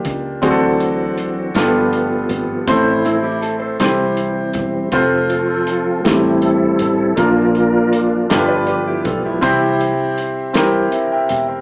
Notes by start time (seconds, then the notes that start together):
Already playing: A#3 D4 F4 G4 A#4
0.05 C#2, kick, closed hi-hat
0.42 D2 D3 E3 F#3 C4 D4 F#4 G#4, kick, closed hi-hat
0.50 A4
0.80 closed hi-hat
1.18 closed hi-hat
1.54 G1 G2 F3 A3 B3 F4 G4 A4, snare, closed hi-hat
1.93 closed hi-hat
2.29 G#1, closed hi-hat
2.67 A1 A2 E3 A3 C4 E4 A4 C5, kick, closed hi-hat
3.05 C4 E4, closed hi-hat
3.23 E4 G4
3.41 A4, closed hi-hat
3.60 A4 C5
3.80 C2 C3 E3 G3 C4 E4 G4 C5, snare, closed hi-hat
4.17 closed hi-hat
4.54 E1, kick, closed hi-hat
4.92 F1 F3 C4 F4 A4 C5, kick, closed hi-hat
5.30 C4 F4 A4, closed hi-hat
5.67 closed hi-hat
6.04 A1 A2 E3 G3 A#3 C4 E4 G4 A4, snare, closed hi-hat
6.10 C4
6.42 C4 E4 A4, closed hi-hat
6.79 A1, closed hi-hat
7.16 A#1 A#2 F3 A#3 D4 F4 A#4, kick, closed hi-hat
7.55 closed hi-hat
7.93 closed hi-hat
8.30 G1 G2 F3 A3 B3 D4 F4 G4 A4, snare, closed hi-hat
8.38 B4
8.48 B4 D5
8.67 G4 B4, closed hi-hat
8.87 E4 G4
9.05 B1 F4 A4, kick, closed hi-hat
9.25 E4 G4
9.41 C2 C3 E3 G3 C4 E4 G4 C5, kick, closed hi-hat
9.81 closed hi-hat
10.18 closed hi-hat
10.53 E3 G3 C4 E4 G4 A#4, snare, closed hi-hat
10.92 C5 E5, closed hi-hat
11.12 E5 G5
11.29 E1 E5 G5, closed hi-hat
11.48 C5 E5